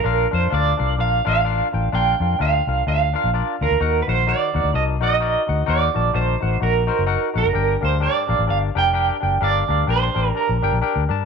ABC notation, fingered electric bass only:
X:1
M:4/4
L:1/16
Q:"Swing" 1/4=128
K:Bb
V:1 name="Fingered electric bass" clef=bass
B,,,2 F,,2 D,,2 C,,2 B,,,2 A,,,4 A,,,2 | B,,,2 F,,2 D,,2 C,,2 D,,3 B,,,2 z D,, D,, | E,,2 B,,,3 z E,, D,, C,,2 B,,,4 D,,2 | E,,2 B,,,2 B,,,2 A,,,2 B,,,3 _G,,,2 z B,,, G,,, |
G,,,2 D,,3 z B,,, A,,, G,,,2 F,,,4 _G,,,2 | G,,,2 D,,2 B,,,2 A,,,2 z B,,, G,,, B,,, z D,, G,,2 |]